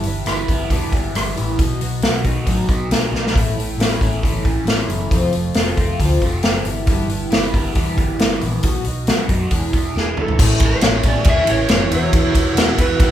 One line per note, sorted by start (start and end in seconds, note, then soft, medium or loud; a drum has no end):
0.00 0.93 G2 medium
0.00 open hi-hat soft
0.04 0.21 G1 medium
0.04 0.28 B3 medium
0.04 0.28 E4 medium
0.08 0.27 E3 soft
0.08 0.29 G3 soft
0.26 0.43 G1 medium
0.26 0.50 E3 medium
0.26 0.49 G3 medium
0.26 cross-stick medium
0.26 open hi-hat medium
0.30 0.49 B3 medium
0.30 0.47 E4 medium
0.48 0.65 G1 medium
0.48 0.71 E3 soft
0.48 0.71 G3 soft
0.48 0.71 B3 soft
0.48 0.71 E4 medium
0.48 kick medium
0.48 open hi-hat soft
0.70 0.87 E1 medium
0.70 0.93 G2 medium
0.70 0.93 D3 medium
0.70 0.94 E3 medium
0.70 0.94 G3 medium
0.70 0.94 B3 medium
0.70 0.92 E4 medium
0.70 kick medium
0.70 open hi-hat medium
0.92 1.10 G1 medium
0.92 1.13 E3 soft
0.92 1.14 G3 soft
0.92 1.15 B3 soft
0.92 1.15 E4 soft
0.92 kick medium
0.92 open hi-hat soft
1.14 1.32 G1 medium
1.14 1.37 E3 medium
1.14 1.37 G3 medium
1.14 1.36 B3 medium
1.14 1.35 E4 medium
1.14 cross-stick medium
1.14 open hi-hat medium
1.36 1.55 A1 medium
1.36 1.59 E3 soft
1.36 1.59 G3 soft
1.36 1.58 B3 soft
1.36 1.59 E4 medium
1.36 open hi-hat soft
1.59 1.76 B1 medium
1.59 1.81 B2 medium
1.59 1.81 F#3 medium
1.59 1.81 B3 medium
1.59 1.81 D#4 medium
1.59 1.80 F#4 medium
1.59 kick medium
1.59 open hi-hat medium
1.81 1.99 B1 medium
1.81 2.02 B3 soft
1.81 2.03 D#4 soft
1.81 2.03 F#4 medium
1.81 open hi-hat soft
2.02 2.20 B1 medium
2.02 2.24 F#3 medium
2.02 2.25 B3 medium
2.02 2.25 D#4 medium
2.02 2.24 F#4 medium
2.02 snare loud
2.02 open hi-hat medium
2.24 2.42 B1 medium
2.24 2.45 B3 soft
2.24 2.45 D#4 soft
2.24 2.46 F#4 medium
2.24 kick medium
2.24 open hi-hat soft
2.45 2.64 A1 medium
2.45 2.68 B2 medium
2.45 2.69 F#3 medium
2.45 2.69 B3 medium
2.45 2.68 D#4 medium
2.45 2.67 F#4 medium
2.45 kick medium
2.45 open hi-hat medium
2.68 2.86 B1 medium
2.68 2.90 B3 soft
2.68 2.91 D#4 soft
2.68 2.91 F#4 soft
2.68 kick medium
2.68 open hi-hat soft
2.91 3.08 B1 medium
2.91 3.13 F#3 medium
2.91 3.13 B3 medium
2.91 3.12 D#4 medium
2.91 3.11 F#4 medium
2.91 snare medium
2.91 open hi-hat medium
3.12 3.30 B1 medium
3.12 3.35 F#3 medium
3.12 3.35 B3 soft
3.12 3.35 D#4 soft
3.12 3.35 F#4 medium
3.12 snare soft
3.27 snare medium
3.34 3.53 A1 medium
3.34 3.57 A2 medium
3.34 3.57 E3 medium
3.34 3.57 A3 medium
3.34 3.56 C#4 medium
3.34 3.55 E4 medium
3.34 kick medium
3.34 open hi-hat medium
3.56 3.74 A1 medium
3.56 3.78 A3 soft
3.56 3.79 C#4 soft
3.56 3.79 E4 soft
3.56 open hi-hat soft
3.78 3.96 A1 medium
3.78 4.01 E3 medium
3.78 4.01 A3 medium
3.78 4.01 C#4 medium
3.78 4.00 E4 medium
3.78 snare medium
3.78 open hi-hat medium
4.01 4.19 A1 medium
4.01 4.21 A3 soft
4.01 4.22 C#4 soft
4.01 4.22 E4 medium
4.01 kick medium
4.01 open hi-hat soft
4.22 4.40 G1 medium
4.22 4.45 A2 medium
4.22 4.45 E3 medium
4.22 4.45 A3 medium
4.22 4.45 C#4 medium
4.22 4.43 E4 medium
4.22 kick medium
4.22 open hi-hat medium
4.45 4.62 A1 medium
4.45 4.66 A3 soft
4.45 4.66 C#4 soft
4.45 4.67 E4 medium
4.45 kick medium
4.45 open hi-hat soft
4.65 4.83 A1 medium
4.65 4.89 E3 medium
4.65 4.89 A3 medium
4.65 4.89 C#4 medium
4.65 4.87 E4 medium
4.65 snare medium
4.65 open hi-hat medium
4.88 5.06 F#1 medium
4.88 5.12 E3 medium
4.88 5.12 A3 soft
4.88 5.12 C#4 soft
4.88 5.11 E4 medium
4.88 open hi-hat soft
5.11 5.28 F1 medium
5.11 5.34 F2 medium
5.11 5.34 C3 medium
5.11 5.34 F3 medium
5.11 5.33 A3 medium
5.11 5.32 C4 medium
5.11 5.32 F4 medium
5.11 kick medium
5.11 open hi-hat medium
5.32 5.50 F1 medium
5.32 5.55 F3 soft
5.32 5.55 A3 soft
5.32 5.55 C4 soft
5.32 5.55 F4 medium
5.32 open hi-hat soft
5.54 5.72 F1 medium
5.54 5.78 F3 medium
5.54 5.78 A3 medium
5.54 5.78 C4 medium
5.54 5.76 F4 medium
5.54 snare medium
5.54 open hi-hat medium
5.77 5.94 F1 medium
5.77 6.00 F3 soft
5.77 6.00 A3 soft
5.77 6.00 C4 soft
5.77 6.00 F4 soft
5.77 kick medium
5.77 open hi-hat soft
6.00 6.17 D2 medium
6.00 6.22 F2 medium
6.00 6.22 C3 medium
6.00 6.23 F3 medium
6.00 6.23 A3 medium
6.00 6.23 C4 medium
6.00 6.21 F4 medium
6.00 kick medium
6.00 open hi-hat medium
6.22 6.39 F1 medium
6.22 6.42 F3 soft
6.22 6.43 A3 soft
6.22 6.44 C4 soft
6.22 6.44 F4 soft
6.22 kick medium
6.22 open hi-hat soft
6.43 6.61 F#1 medium
6.43 6.66 F3 medium
6.43 6.66 A3 medium
6.43 6.67 C4 medium
6.43 6.66 F4 medium
6.43 snare medium
6.43 open hi-hat medium
6.65 6.83 G1 medium
6.65 6.85 G2 medium
6.65 6.87 E3 soft
6.65 6.88 G3 soft
6.65 6.88 B3 soft
6.65 6.88 E4 medium
6.65 open hi-hat soft
6.87 7.05 G1 medium
6.87 7.10 G2 medium
6.87 7.10 D3 medium
6.87 7.10 E3 medium
6.87 7.09 G3 medium
6.87 7.08 B3 medium
6.87 7.07 E4 medium
6.87 kick medium
6.87 open hi-hat medium
7.08 7.26 G1 medium
7.08 7.32 E3 soft
7.08 7.32 G3 soft
7.08 7.32 B3 medium
7.08 7.31 E4 medium
7.08 open hi-hat soft
7.30 7.49 G1 medium
7.30 7.55 E3 medium
7.30 7.54 G3 medium
7.30 7.53 B3 medium
7.30 8.41 E4 medium
7.30 snare loud
7.30 open hi-hat medium
7.35 7.52 E4 medium
7.54 7.71 G1 medium
7.54 7.74 E3 soft
7.54 7.75 G3 soft
7.54 7.75 B3 soft
7.54 7.76 E4 medium
7.54 kick medium
7.54 open hi-hat soft
7.75 7.93 E1 medium
7.75 7.97 G2 medium
7.75 7.98 D3 medium
7.75 7.98 E3 medium
7.75 7.97 G3 medium
7.75 7.97 B3 medium
7.75 7.96 E4 medium
7.75 kick medium
7.75 open hi-hat medium
7.97 8.14 G1 medium
7.97 8.18 E3 soft
7.97 8.19 G3 soft
7.97 8.19 B3 soft
7.97 8.20 E4 soft
7.97 kick medium
7.97 open hi-hat soft
8.19 8.38 G1 medium
8.19 8.41 E3 medium
8.19 8.41 G3 medium
8.19 8.40 B3 medium
8.19 8.39 E4 medium
8.19 snare loud
8.19 open hi-hat medium
8.41 8.59 A#1 medium
8.41 8.63 E3 soft
8.41 8.64 G3 soft
8.41 8.63 B3 medium
8.41 8.63 E4 medium
8.41 open hi-hat soft
8.63 8.81 B1 medium
8.63 8.86 B2 medium
8.63 8.86 F#3 medium
8.63 8.86 B3 medium
8.63 8.86 D#4 medium
8.63 8.84 F#4 medium
8.63 kick medium
8.63 open hi-hat medium
8.84 9.03 B1 medium
8.84 9.08 B3 soft
8.84 9.09 D#4 soft
8.84 9.08 F#4 medium
8.84 open hi-hat soft
9.07 9.25 B1 medium
9.07 9.30 F#3 medium
9.07 9.31 B3 medium
9.07 9.30 D#4 medium
9.07 9.29 F#4 medium
9.07 snare loud
9.07 open hi-hat medium
9.28 9.46 F#2 medium
9.28 9.51 B3 soft
9.28 9.51 D#4 soft
9.28 9.52 F#4 soft
9.28 kick medium
9.28 open hi-hat soft
9.51 9.68 E1 medium
9.51 9.73 E2 medium
9.51 9.73 B2 medium
9.51 9.74 E3 medium
9.51 9.74 G#3 medium
9.51 9.73 D4 medium
9.51 9.72 E4 medium
9.51 kick medium
9.51 open hi-hat medium
9.73 9.90 E1 medium
9.73 9.94 E3 soft
9.73 9.95 G#3 soft
9.73 10.39 B3 medium
9.73 9.95 D4 medium
9.73 9.95 E4 medium
9.73 kick medium
9.73 open hi-hat soft
9.95 10.13 E1 medium
9.95 10.17 E3 medium
9.95 10.18 G#3 medium
9.95 10.17 D4 medium
9.95 10.16 E4 medium
9.95 snare soft
10.00 10.21 G#4 medium
10.17 10.35 E1 medium
10.17 10.38 E3 soft
10.17 10.38 G#3 medium
10.17 10.39 D4 soft
10.17 10.39 E4 medium
10.17 mid tom medium
10.21 10.60 A4 medium
10.28 floor tom medium
10.37 10.54 A1 medium
10.37 10.61 A2 medium
10.37 10.61 E3 medium
10.37 10.61 G#3 medium
10.37 11.88 A3 medium
10.37 10.61 C#4 medium
10.37 11.89 C#4 medium
10.37 10.62 E4 medium
10.37 11.90 G#4 medium
10.37 kick loud
10.37 crash loud
10.42 11.92 G#5 medium
10.42 11.92 C#6 medium
10.60 10.76 A1 medium
10.60 11.70 A3 medium
10.60 10.84 E4 medium
10.60 kick medium
10.60 ride medium
10.64 10.84 G#3 soft
10.64 10.84 C#4 soft
10.64 11.08 C#5 medium
10.81 10.99 A1 medium
10.81 11.05 E3 medium
10.81 11.05 G#3 medium
10.81 11.24 G#4 medium
10.81 snare loud
10.81 ride loud
10.85 11.04 C#4 medium
10.85 11.02 E4 medium
11.03 11.20 A1 medium
11.03 11.26 G#3 soft
11.03 11.26 C#4 soft
11.03 11.26 E4 medium
11.03 kick medium
11.03 ride medium
11.08 11.29 D5 medium
11.24 11.42 E2 medium
11.24 11.48 A2 medium
11.24 11.49 E3 medium
11.24 11.49 G#3 medium
11.24 11.48 C#4 medium
11.24 11.46 E4 medium
11.24 11.92 G#4 medium
11.24 kick loud
11.24 ride loud
11.29 11.51 E5 loud
11.47 11.64 A1 medium
11.47 11.70 G#3 soft
11.47 11.70 C#4 soft
11.47 11.70 E4 soft
11.47 11.94 C#5 loud
11.47 ride medium
11.68 11.86 F#1 medium
11.68 11.92 E3 medium
11.68 11.92 G#3 medium
11.68 11.93 C#4 medium
11.68 11.91 E4 medium
11.68 snare loud
11.68 ride loud
11.90 12.07 E1 medium
11.90 12.13 E2 medium
11.90 13.11 B3 medium
11.90 12.14 B3 soft
11.90 13.11 E4 medium
11.90 12.15 E4 medium
11.90 12.14 F#4 medium
11.90 13.11 F#4 medium
11.90 13.11 B4 medium
11.90 13.11 F#5 medium
11.90 13.11 E6 medium
11.90 ride medium
11.94 12.14 E3 soft
11.94 12.55 C#5 medium
12.13 12.29 E1 medium
12.13 12.36 E2 medium
12.13 12.36 B2 medium
12.13 12.36 E3 medium
12.13 12.36 B3 medium
12.13 12.37 E4 medium
12.13 12.36 F#4 medium
12.13 kick loud
12.13 ride loud
12.35 12.50 E1 medium
12.35 12.58 B3 medium
12.35 12.59 E4 medium
12.35 12.58 F#4 medium
12.35 kick medium
12.35 ride medium
12.39 12.57 E3 soft
12.55 12.71 E1 medium
12.55 12.80 E3 medium
12.55 13.00 F#4 medium
12.55 snare loud
12.55 ride loud
12.60 12.80 B3 medium
12.60 12.80 E4 medium
12.60 12.79 F#4 medium
12.78 12.94 E1 medium
12.78 13.01 E4 soft
12.78 13.02 F#4 medium
12.78 13.11 B4 loud
12.78 kick medium
12.78 ride medium
12.82 13.01 E3 soft
12.82 13.01 B3 soft
13.00 13.11 B1 medium
13.00 13.11 E2 medium
13.00 13.11 B2 medium
13.00 13.11 E3 medium
13.00 13.11 B3 medium
13.00 13.11 E4 medium
13.00 13.11 F#4 medium
13.00 kick loud
13.00 ride loud